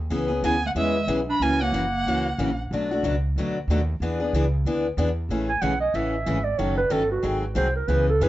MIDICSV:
0, 0, Header, 1, 5, 480
1, 0, Start_track
1, 0, Key_signature, 3, "major"
1, 0, Tempo, 323974
1, 173, Time_signature, 4, 2, 24, 8
1, 12280, End_track
2, 0, Start_track
2, 0, Title_t, "Violin"
2, 0, Program_c, 0, 40
2, 675, Note_on_c, 0, 80, 87
2, 962, Note_off_c, 0, 80, 0
2, 993, Note_on_c, 0, 78, 77
2, 1061, Note_off_c, 0, 78, 0
2, 1152, Note_on_c, 0, 76, 85
2, 1589, Note_off_c, 0, 76, 0
2, 1937, Note_on_c, 0, 83, 89
2, 2113, Note_on_c, 0, 80, 99
2, 2135, Note_off_c, 0, 83, 0
2, 2396, Note_on_c, 0, 78, 96
2, 2418, Note_off_c, 0, 80, 0
2, 3826, Note_off_c, 0, 78, 0
2, 12280, End_track
3, 0, Start_track
3, 0, Title_t, "Clarinet"
3, 0, Program_c, 1, 71
3, 658, Note_on_c, 1, 59, 71
3, 953, Note_off_c, 1, 59, 0
3, 983, Note_on_c, 1, 57, 65
3, 1053, Note_off_c, 1, 57, 0
3, 1157, Note_on_c, 1, 56, 71
3, 1592, Note_off_c, 1, 56, 0
3, 1908, Note_on_c, 1, 62, 75
3, 2091, Note_on_c, 1, 61, 84
3, 2114, Note_off_c, 1, 62, 0
3, 2405, Note_on_c, 1, 58, 78
3, 2427, Note_off_c, 1, 61, 0
3, 3830, Note_off_c, 1, 58, 0
3, 8138, Note_on_c, 1, 80, 90
3, 8323, Note_on_c, 1, 78, 82
3, 8346, Note_off_c, 1, 80, 0
3, 8590, Note_off_c, 1, 78, 0
3, 8599, Note_on_c, 1, 75, 78
3, 8813, Note_on_c, 1, 76, 82
3, 8836, Note_off_c, 1, 75, 0
3, 9543, Note_on_c, 1, 74, 83
3, 9565, Note_off_c, 1, 76, 0
3, 9754, Note_on_c, 1, 73, 74
3, 9776, Note_off_c, 1, 74, 0
3, 10027, Note_off_c, 1, 73, 0
3, 10035, Note_on_c, 1, 71, 81
3, 10250, Note_on_c, 1, 69, 76
3, 10272, Note_off_c, 1, 71, 0
3, 10529, Note_off_c, 1, 69, 0
3, 10538, Note_on_c, 1, 66, 66
3, 10983, Note_off_c, 1, 66, 0
3, 11208, Note_on_c, 1, 72, 83
3, 11473, Note_off_c, 1, 72, 0
3, 11500, Note_on_c, 1, 70, 82
3, 11678, Note_on_c, 1, 71, 92
3, 11700, Note_off_c, 1, 70, 0
3, 11968, Note_off_c, 1, 71, 0
3, 11986, Note_on_c, 1, 69, 76
3, 12191, Note_on_c, 1, 71, 76
3, 12213, Note_off_c, 1, 69, 0
3, 12280, Note_off_c, 1, 71, 0
3, 12280, End_track
4, 0, Start_track
4, 0, Title_t, "Steel-string acoustic guitar"
4, 0, Program_c, 2, 25
4, 155, Note_on_c, 2, 52, 68
4, 157, Note_on_c, 2, 49, 59
4, 169, Note_on_c, 2, 59, 71
4, 171, Note_on_c, 2, 61, 72
4, 176, Note_on_c, 2, 68, 64
4, 399, Note_off_c, 2, 68, 0
4, 417, Note_off_c, 2, 61, 0
4, 417, Note_on_c, 2, 68, 54
4, 429, Note_off_c, 2, 59, 0
4, 435, Note_on_c, 2, 61, 43
4, 436, Note_off_c, 2, 52, 0
4, 438, Note_off_c, 2, 49, 0
4, 447, Note_on_c, 2, 59, 48
4, 625, Note_off_c, 2, 68, 0
4, 634, Note_off_c, 2, 61, 0
4, 635, Note_off_c, 2, 59, 0
4, 651, Note_on_c, 2, 49, 82
4, 653, Note_on_c, 2, 59, 77
4, 655, Note_on_c, 2, 52, 92
4, 666, Note_on_c, 2, 61, 89
4, 670, Note_on_c, 2, 68, 94
4, 810, Note_off_c, 2, 49, 0
4, 810, Note_off_c, 2, 59, 0
4, 811, Note_off_c, 2, 52, 0
4, 817, Note_off_c, 2, 61, 0
4, 819, Note_off_c, 2, 68, 0
4, 1126, Note_on_c, 2, 49, 67
4, 1129, Note_on_c, 2, 52, 71
4, 1132, Note_on_c, 2, 61, 69
4, 1137, Note_on_c, 2, 59, 72
4, 1142, Note_on_c, 2, 68, 67
4, 1422, Note_off_c, 2, 49, 0
4, 1424, Note_off_c, 2, 52, 0
4, 1426, Note_off_c, 2, 61, 0
4, 1428, Note_off_c, 2, 59, 0
4, 1430, Note_off_c, 2, 68, 0
4, 1603, Note_on_c, 2, 49, 79
4, 1604, Note_on_c, 2, 52, 81
4, 1608, Note_on_c, 2, 61, 100
4, 1610, Note_on_c, 2, 59, 86
4, 1620, Note_on_c, 2, 68, 88
4, 1765, Note_off_c, 2, 49, 0
4, 1766, Note_off_c, 2, 52, 0
4, 1768, Note_off_c, 2, 61, 0
4, 1769, Note_off_c, 2, 59, 0
4, 1774, Note_off_c, 2, 68, 0
4, 2093, Note_on_c, 2, 49, 68
4, 2100, Note_on_c, 2, 52, 76
4, 2112, Note_on_c, 2, 58, 64
4, 2112, Note_on_c, 2, 61, 70
4, 2118, Note_on_c, 2, 66, 72
4, 2349, Note_off_c, 2, 66, 0
4, 2365, Note_off_c, 2, 49, 0
4, 2367, Note_on_c, 2, 66, 46
4, 2368, Note_off_c, 2, 52, 0
4, 2369, Note_off_c, 2, 61, 0
4, 2375, Note_off_c, 2, 58, 0
4, 2387, Note_on_c, 2, 61, 50
4, 2402, Note_on_c, 2, 58, 36
4, 2555, Note_off_c, 2, 58, 0
4, 2558, Note_off_c, 2, 61, 0
4, 2560, Note_off_c, 2, 66, 0
4, 2573, Note_on_c, 2, 49, 83
4, 2573, Note_on_c, 2, 58, 74
4, 2576, Note_on_c, 2, 61, 85
4, 2578, Note_on_c, 2, 52, 76
4, 2583, Note_on_c, 2, 66, 91
4, 2730, Note_off_c, 2, 49, 0
4, 2730, Note_off_c, 2, 58, 0
4, 2732, Note_off_c, 2, 61, 0
4, 2733, Note_off_c, 2, 52, 0
4, 2735, Note_off_c, 2, 66, 0
4, 3067, Note_on_c, 2, 49, 66
4, 3079, Note_on_c, 2, 52, 68
4, 3083, Note_on_c, 2, 58, 70
4, 3085, Note_on_c, 2, 61, 66
4, 3087, Note_on_c, 2, 66, 75
4, 3353, Note_off_c, 2, 49, 0
4, 3359, Note_off_c, 2, 52, 0
4, 3361, Note_off_c, 2, 58, 0
4, 3362, Note_off_c, 2, 61, 0
4, 3363, Note_off_c, 2, 66, 0
4, 3540, Note_on_c, 2, 52, 87
4, 3542, Note_on_c, 2, 49, 84
4, 3551, Note_on_c, 2, 58, 94
4, 3554, Note_on_c, 2, 66, 85
4, 3558, Note_on_c, 2, 61, 86
4, 3693, Note_off_c, 2, 52, 0
4, 3695, Note_off_c, 2, 49, 0
4, 3699, Note_off_c, 2, 58, 0
4, 3701, Note_off_c, 2, 66, 0
4, 3702, Note_off_c, 2, 61, 0
4, 4038, Note_on_c, 2, 47, 62
4, 4049, Note_on_c, 2, 62, 69
4, 4050, Note_on_c, 2, 57, 69
4, 4051, Note_on_c, 2, 54, 61
4, 4059, Note_on_c, 2, 66, 65
4, 4295, Note_off_c, 2, 66, 0
4, 4297, Note_off_c, 2, 47, 0
4, 4303, Note_off_c, 2, 57, 0
4, 4303, Note_off_c, 2, 62, 0
4, 4304, Note_off_c, 2, 54, 0
4, 4313, Note_on_c, 2, 66, 48
4, 4336, Note_on_c, 2, 62, 49
4, 4350, Note_on_c, 2, 57, 40
4, 4493, Note_off_c, 2, 66, 0
4, 4496, Note_off_c, 2, 62, 0
4, 4499, Note_off_c, 2, 57, 0
4, 4503, Note_on_c, 2, 54, 85
4, 4506, Note_on_c, 2, 47, 75
4, 4514, Note_on_c, 2, 62, 80
4, 4516, Note_on_c, 2, 57, 92
4, 4516, Note_on_c, 2, 66, 88
4, 4655, Note_off_c, 2, 54, 0
4, 4656, Note_off_c, 2, 47, 0
4, 4660, Note_off_c, 2, 62, 0
4, 4661, Note_off_c, 2, 57, 0
4, 4661, Note_off_c, 2, 66, 0
4, 5003, Note_on_c, 2, 47, 68
4, 5011, Note_on_c, 2, 57, 65
4, 5013, Note_on_c, 2, 54, 77
4, 5023, Note_on_c, 2, 62, 77
4, 5025, Note_on_c, 2, 66, 78
4, 5281, Note_off_c, 2, 47, 0
4, 5285, Note_off_c, 2, 54, 0
4, 5285, Note_off_c, 2, 57, 0
4, 5290, Note_off_c, 2, 62, 0
4, 5292, Note_off_c, 2, 66, 0
4, 5484, Note_on_c, 2, 47, 88
4, 5493, Note_on_c, 2, 54, 82
4, 5494, Note_on_c, 2, 57, 91
4, 5496, Note_on_c, 2, 66, 91
4, 5499, Note_on_c, 2, 62, 88
4, 5625, Note_off_c, 2, 47, 0
4, 5630, Note_off_c, 2, 54, 0
4, 5630, Note_off_c, 2, 57, 0
4, 5631, Note_off_c, 2, 66, 0
4, 5633, Note_off_c, 2, 62, 0
4, 5957, Note_on_c, 2, 52, 68
4, 5964, Note_on_c, 2, 59, 70
4, 5970, Note_on_c, 2, 68, 75
4, 5975, Note_on_c, 2, 62, 65
4, 6207, Note_off_c, 2, 68, 0
4, 6216, Note_off_c, 2, 52, 0
4, 6220, Note_off_c, 2, 59, 0
4, 6222, Note_off_c, 2, 62, 0
4, 6224, Note_on_c, 2, 68, 56
4, 6239, Note_on_c, 2, 62, 48
4, 6253, Note_on_c, 2, 59, 43
4, 6408, Note_off_c, 2, 68, 0
4, 6415, Note_off_c, 2, 62, 0
4, 6422, Note_off_c, 2, 59, 0
4, 6439, Note_on_c, 2, 52, 90
4, 6444, Note_on_c, 2, 59, 87
4, 6453, Note_on_c, 2, 62, 95
4, 6460, Note_on_c, 2, 68, 89
4, 6583, Note_off_c, 2, 52, 0
4, 6585, Note_off_c, 2, 59, 0
4, 6589, Note_off_c, 2, 62, 0
4, 6593, Note_off_c, 2, 68, 0
4, 6911, Note_on_c, 2, 52, 64
4, 6921, Note_on_c, 2, 62, 72
4, 6924, Note_on_c, 2, 59, 66
4, 6925, Note_on_c, 2, 68, 83
4, 7194, Note_off_c, 2, 52, 0
4, 7199, Note_off_c, 2, 62, 0
4, 7200, Note_off_c, 2, 59, 0
4, 7201, Note_off_c, 2, 68, 0
4, 7377, Note_on_c, 2, 59, 86
4, 7379, Note_on_c, 2, 52, 76
4, 7385, Note_on_c, 2, 62, 82
4, 7389, Note_on_c, 2, 68, 92
4, 7531, Note_off_c, 2, 59, 0
4, 7532, Note_off_c, 2, 52, 0
4, 7536, Note_off_c, 2, 62, 0
4, 7538, Note_off_c, 2, 68, 0
4, 7857, Note_on_c, 2, 49, 59
4, 7862, Note_on_c, 2, 52, 65
4, 7868, Note_on_c, 2, 68, 74
4, 7869, Note_on_c, 2, 61, 69
4, 7872, Note_on_c, 2, 57, 66
4, 8147, Note_off_c, 2, 49, 0
4, 8149, Note_off_c, 2, 52, 0
4, 8153, Note_off_c, 2, 61, 0
4, 8153, Note_off_c, 2, 68, 0
4, 8155, Note_off_c, 2, 57, 0
4, 8319, Note_on_c, 2, 52, 75
4, 8322, Note_on_c, 2, 49, 83
4, 8330, Note_on_c, 2, 57, 82
4, 8335, Note_on_c, 2, 68, 92
4, 8337, Note_on_c, 2, 61, 87
4, 8482, Note_off_c, 2, 52, 0
4, 8484, Note_off_c, 2, 49, 0
4, 8488, Note_off_c, 2, 57, 0
4, 8490, Note_off_c, 2, 68, 0
4, 8491, Note_off_c, 2, 61, 0
4, 8803, Note_on_c, 2, 49, 64
4, 8811, Note_on_c, 2, 52, 67
4, 8811, Note_on_c, 2, 57, 67
4, 8811, Note_on_c, 2, 61, 75
4, 8823, Note_on_c, 2, 68, 66
4, 9100, Note_off_c, 2, 49, 0
4, 9104, Note_off_c, 2, 52, 0
4, 9104, Note_off_c, 2, 57, 0
4, 9104, Note_off_c, 2, 61, 0
4, 9110, Note_off_c, 2, 68, 0
4, 9280, Note_on_c, 2, 49, 85
4, 9289, Note_on_c, 2, 52, 75
4, 9290, Note_on_c, 2, 57, 82
4, 9299, Note_on_c, 2, 68, 83
4, 9301, Note_on_c, 2, 61, 86
4, 9443, Note_off_c, 2, 49, 0
4, 9447, Note_off_c, 2, 52, 0
4, 9448, Note_off_c, 2, 57, 0
4, 9452, Note_off_c, 2, 68, 0
4, 9453, Note_off_c, 2, 61, 0
4, 9758, Note_on_c, 2, 51, 63
4, 9760, Note_on_c, 2, 54, 63
4, 9762, Note_on_c, 2, 63, 76
4, 9766, Note_on_c, 2, 61, 61
4, 9769, Note_on_c, 2, 69, 69
4, 10057, Note_off_c, 2, 51, 0
4, 10059, Note_off_c, 2, 54, 0
4, 10059, Note_off_c, 2, 63, 0
4, 10062, Note_off_c, 2, 61, 0
4, 10063, Note_off_c, 2, 69, 0
4, 10224, Note_on_c, 2, 54, 78
4, 10227, Note_on_c, 2, 51, 83
4, 10228, Note_on_c, 2, 61, 95
4, 10238, Note_on_c, 2, 63, 88
4, 10241, Note_on_c, 2, 69, 91
4, 10394, Note_off_c, 2, 54, 0
4, 10396, Note_off_c, 2, 51, 0
4, 10397, Note_off_c, 2, 61, 0
4, 10402, Note_off_c, 2, 63, 0
4, 10403, Note_off_c, 2, 69, 0
4, 10705, Note_on_c, 2, 51, 76
4, 10715, Note_on_c, 2, 60, 67
4, 10716, Note_on_c, 2, 63, 67
4, 10719, Note_on_c, 2, 54, 66
4, 10730, Note_on_c, 2, 68, 75
4, 11011, Note_off_c, 2, 51, 0
4, 11016, Note_off_c, 2, 60, 0
4, 11016, Note_off_c, 2, 63, 0
4, 11018, Note_off_c, 2, 54, 0
4, 11024, Note_off_c, 2, 68, 0
4, 11185, Note_on_c, 2, 51, 73
4, 11199, Note_on_c, 2, 54, 85
4, 11199, Note_on_c, 2, 60, 94
4, 11204, Note_on_c, 2, 68, 83
4, 11207, Note_on_c, 2, 63, 90
4, 11355, Note_off_c, 2, 51, 0
4, 11362, Note_off_c, 2, 54, 0
4, 11362, Note_off_c, 2, 60, 0
4, 11365, Note_off_c, 2, 68, 0
4, 11366, Note_off_c, 2, 63, 0
4, 11680, Note_on_c, 2, 49, 61
4, 11684, Note_on_c, 2, 52, 64
4, 11686, Note_on_c, 2, 59, 73
4, 11698, Note_on_c, 2, 61, 69
4, 11700, Note_on_c, 2, 68, 71
4, 11978, Note_off_c, 2, 49, 0
4, 11980, Note_off_c, 2, 52, 0
4, 11981, Note_off_c, 2, 59, 0
4, 11987, Note_off_c, 2, 61, 0
4, 11988, Note_off_c, 2, 68, 0
4, 12168, Note_on_c, 2, 49, 77
4, 12171, Note_on_c, 2, 59, 89
4, 12172, Note_on_c, 2, 52, 87
4, 12177, Note_on_c, 2, 61, 95
4, 12187, Note_on_c, 2, 68, 93
4, 12280, Note_off_c, 2, 49, 0
4, 12280, Note_off_c, 2, 52, 0
4, 12280, Note_off_c, 2, 59, 0
4, 12280, Note_off_c, 2, 61, 0
4, 12280, Note_off_c, 2, 68, 0
4, 12280, End_track
5, 0, Start_track
5, 0, Title_t, "Upright bass"
5, 0, Program_c, 3, 32
5, 155, Note_on_c, 3, 37, 68
5, 624, Note_off_c, 3, 37, 0
5, 633, Note_on_c, 3, 38, 83
5, 1105, Note_off_c, 3, 38, 0
5, 1113, Note_on_c, 3, 40, 72
5, 1588, Note_off_c, 3, 40, 0
5, 1595, Note_on_c, 3, 35, 89
5, 2061, Note_off_c, 3, 35, 0
5, 2070, Note_on_c, 3, 37, 73
5, 2546, Note_off_c, 3, 37, 0
5, 2555, Note_on_c, 3, 30, 87
5, 3029, Note_off_c, 3, 30, 0
5, 3043, Note_on_c, 3, 37, 69
5, 3513, Note_off_c, 3, 37, 0
5, 3533, Note_on_c, 3, 34, 86
5, 3998, Note_off_c, 3, 34, 0
5, 4012, Note_on_c, 3, 35, 80
5, 4478, Note_off_c, 3, 35, 0
5, 4491, Note_on_c, 3, 37, 88
5, 4957, Note_off_c, 3, 37, 0
5, 4978, Note_on_c, 3, 38, 75
5, 5440, Note_off_c, 3, 38, 0
5, 5448, Note_on_c, 3, 39, 90
5, 5915, Note_off_c, 3, 39, 0
5, 5930, Note_on_c, 3, 40, 78
5, 6396, Note_off_c, 3, 40, 0
5, 6415, Note_on_c, 3, 37, 86
5, 6878, Note_off_c, 3, 37, 0
5, 6894, Note_on_c, 3, 38, 76
5, 7358, Note_off_c, 3, 38, 0
5, 7367, Note_on_c, 3, 40, 95
5, 7827, Note_off_c, 3, 40, 0
5, 7836, Note_on_c, 3, 33, 70
5, 8309, Note_off_c, 3, 33, 0
5, 8321, Note_on_c, 3, 35, 72
5, 8788, Note_off_c, 3, 35, 0
5, 8797, Note_on_c, 3, 33, 80
5, 9269, Note_off_c, 3, 33, 0
5, 9280, Note_on_c, 3, 32, 88
5, 9751, Note_off_c, 3, 32, 0
5, 9758, Note_on_c, 3, 30, 74
5, 10222, Note_off_c, 3, 30, 0
5, 10231, Note_on_c, 3, 31, 74
5, 10706, Note_off_c, 3, 31, 0
5, 10713, Note_on_c, 3, 32, 75
5, 11180, Note_off_c, 3, 32, 0
5, 11189, Note_on_c, 3, 36, 94
5, 11664, Note_off_c, 3, 36, 0
5, 11674, Note_on_c, 3, 37, 85
5, 12147, Note_off_c, 3, 37, 0
5, 12160, Note_on_c, 3, 42, 85
5, 12280, Note_off_c, 3, 42, 0
5, 12280, End_track
0, 0, End_of_file